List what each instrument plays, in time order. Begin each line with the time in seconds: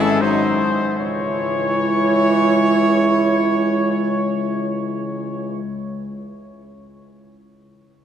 Already playing: tuba G#1, trombone E3, french horn C#4, trumpet E4
0.01 trumpet A4
0.21 trombone F#3, trumpet D#4 C5, french horn D#4
0.99 tuba C#2, trombone E3, french horn E4, trumpet C#5